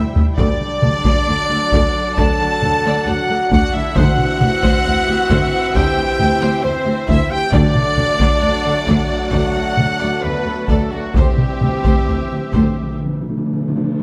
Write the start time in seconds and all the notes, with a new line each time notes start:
Already playing: G3 E4 G4 C5 E5 G5
0.16 D2 E5, taiko low
0.35 D2 F#3 D4 A4 D5, taiko
0.60 taiko mid
0.82 D2 A4, taiko mid
1.04 D2 D5, taiko
1.26 D2 F#3 D5 F#5
1.50 D2 A4
1.72 D2 D5, taiko
2.17 D2 A4 D5 A5, taiko
2.39 D2 D5
2.62 D2 A4, taiko mid
2.85 D2 D5
3.07 D2 F#4 D5 F#5
3.29 D2 A4
3.51 D2 F#4 D5 F#5, taiko
3.74 D2 E4 D5 E5
3.95 D2 D3 E3 C4 E4 F#4 C5 E5 F#5, taiko
4.18 taiko mid
4.40 D2 G4, taiko mid
4.62 D2 C5, taiko
4.85 D2 C4 C5
5.07 D2 G4
5.29 D2 C5, taiko
5.74 D2 G4 C5 G5, taiko
5.96 D2 C5
6.19 D2 G4, taiko mid
6.41 D2 C5
6.62 D2 C4 C5
6.84 D2 G4
7.07 D2 E4 C5 E5, taiko
7.30 D2 G4 C5 G5
7.52 D2 D3 F#3 A3 D4 F#4 A4 D5 F#5, taiko
7.75 taiko mid
7.97 D2 A4, taiko mid
8.19 D2 D5, taiko
8.41 D2 D5
8.64 D2 A4
8.87 D2 D5, taiko
9.31 D2 F#4 D5 F#5, taiko
9.54 D2 D5
9.77 D2 A4, taiko mid
9.99 D2 D5
10.22 D2 B3 B4 D5
10.45 D2 A4
10.67 D2 A3 A4 D5, taiko
10.92 D2 F#3 F#4 D5
11.14 D2 D3 E3 G3 C4 G4 C5 E5, taiko, reverse cymbal
11.22 D3
11.30 D3
11.38 D3, taiko mid
11.46 D3
11.53 D3
11.60 D2 D3 G4, taiko mid
11.68 D3
11.76 D3
11.84 D2 D3 C5, taiko
11.91 D3
11.99 D3
12.07 D2 D3 C5
12.16 D3
12.22 D3
12.30 D2 D3 G4
12.39 D3
12.47 D3
12.52 D2 D3 C5, taiko
12.61 D3
12.68 D3
12.77 D3
12.83 D3
12.91 D3
12.99 D3
13.06 D3
13.13 D3
13.21 D3
13.29 D3
13.37 D3
13.46 D3
13.53 D3
13.61 D3
13.68 D3
13.76 D3
13.84 D3
13.91 D3
14.00 D3